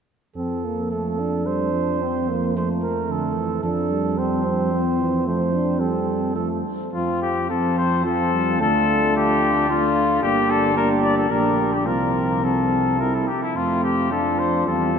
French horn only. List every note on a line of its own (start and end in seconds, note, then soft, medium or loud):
0.36 0.66 C4 soft
0.64 0.94 A#3 soft
0.92 1.20 A3 soft
1.19 2.03 D4 soft
2.02 2.30 C4 soft
2.29 2.57 A#3 soft
2.56 3.64 A3 soft
3.64 4.19 D4 soft
4.18 4.44 C4 soft
4.46 5.28 C4 soft
5.27 5.53 A3 soft
5.53 5.82 D4 soft
5.80 6.34 C4 soft
6.35 6.64 A3 soft
6.94 7.46 C4 soft
7.50 8.04 C4 soft
8.06 8.62 C4 soft
8.60 9.70 D4 soft
9.70 10.22 D4 soft
10.24 10.76 D4 soft
10.78 11.29 D4 soft
11.30 11.88 D4 soft
11.86 12.42 C4 soft
12.43 12.98 C4 soft
13.00 13.28 C4 soft
13.56 14.13 C4 soft
14.12 14.70 D4 soft
14.68 14.94 C4 soft
14.95 14.99 C4 soft